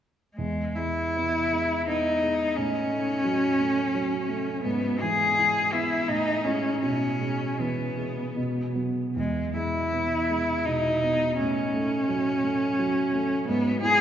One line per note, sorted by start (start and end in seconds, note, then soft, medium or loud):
0.35 2.53 E2 soft
0.35 0.77 G#3 soft
0.76 1.38 G#3 soft
0.76 1.86 E4 medium
1.16 1.74 B3 soft
1.52 2.09 G#3 soft
1.87 2.43 B3 soft
1.87 2.57 D#4 medium
2.23 2.57 G#3 soft
2.55 4.61 A2 soft
2.55 4.63 C#4 medium
2.90 3.45 A3 soft
3.24 3.80 F#3 soft
3.60 4.15 A3 soft
3.95 4.50 F#3 soft
4.29 4.65 A3 soft
4.64 6.06 G#2 soft
4.64 5.02 B3 medium
5.01 5.60 E3 soft
5.01 5.75 G#4 medium
5.38 5.95 E4 soft
5.73 6.09 B3 soft
5.73 6.09 E4 medium
6.08 6.82 A2 soft
6.08 6.46 D#4 medium
6.44 6.80 G#3 soft
6.44 6.82 C#4 medium
6.44 6.80 E4 soft
6.82 8.33 B2 soft
6.82 7.61 C#4 medium
7.21 7.83 G#3 soft
7.60 8.21 E3 soft
7.60 8.76 B3 soft
7.98 8.37 G#3 soft
8.36 9.14 B2 soft
8.75 9.13 F#3 soft
8.75 9.13 B3 soft
9.16 11.34 E2 soft
9.16 9.54 G#3 medium
9.56 10.15 G#3 soft
9.56 10.67 E4 medium
9.93 10.51 B3 soft
10.30 10.88 G#3 soft
10.65 11.24 B2 soft
10.65 11.38 D#4 medium
11.03 11.38 B3 soft
11.38 13.44 A2 soft
11.38 13.44 C#4 medium
11.74 12.30 A3 soft
12.08 12.65 F#3 soft
12.44 13.00 A3 soft
12.79 13.34 F#3 soft
13.14 13.48 A3 soft
13.48 14.01 G#2 medium
13.48 13.81 B3 medium
13.81 14.01 B3 soft
13.81 14.01 E4 soft
13.81 14.01 G#4 medium